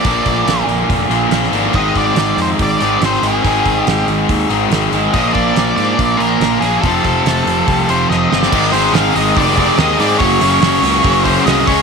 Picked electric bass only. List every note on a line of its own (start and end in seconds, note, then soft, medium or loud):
0.05 0.20 A#1 medium
0.26 0.41 A#1 medium
0.46 0.62 A#1 medium
0.67 0.83 A#1 medium
0.90 1.05 F1 medium
1.10 1.26 A#1 medium
1.31 1.46 A#1 medium
1.51 1.67 G#1 medium
1.74 1.90 G#1 medium
1.96 2.11 G#1 medium
2.15 2.31 G#1 medium
2.37 2.53 F2 medium
2.60 2.75 G#1 medium
2.81 2.96 G#1 medium
3.01 3.17 G#1 medium
3.23 3.38 G#1 medium
3.45 3.60 G#1 medium
3.66 3.81 G#1 medium
3.87 4.02 G#1 medium
4.08 4.23 G#1 medium
4.29 4.44 D#2 medium
4.50 4.65 G#1 medium
4.71 4.86 G#1 medium
4.92 5.07 G#1 medium
5.14 5.29 A#1 medium
5.35 5.50 A#1 medium
5.56 5.71 A#1 medium
5.77 5.93 G#2 medium
5.99 6.14 A#1 medium
6.19 6.34 A#1 medium
6.40 6.56 A#1 medium
6.61 6.77 A#1 medium
6.83 6.99 F1 medium
7.05 7.20 F1 medium
7.25 7.40 F1 medium
7.46 7.61 F1 medium
7.68 7.83 C2 medium
7.89 8.04 F1 medium
8.10 8.25 F1 medium
8.32 8.47 G1 medium
8.53 8.69 G#1 loud
8.72 8.89 G#1 medium
8.93 9.10 G#1 medium
9.15 9.32 G#1 medium
9.37 9.69 F1 loud
9.78 9.94 D#2 loud
9.99 10.15 G#2 medium
10.20 10.37 F#1 medium
10.41 10.58 F#1 medium
10.61 10.78 F#1 medium
10.82 10.99 C#2 medium
11.04 11.37 F#1 medium
11.46 11.63 C2 loud
11.68 11.82 C#2 loud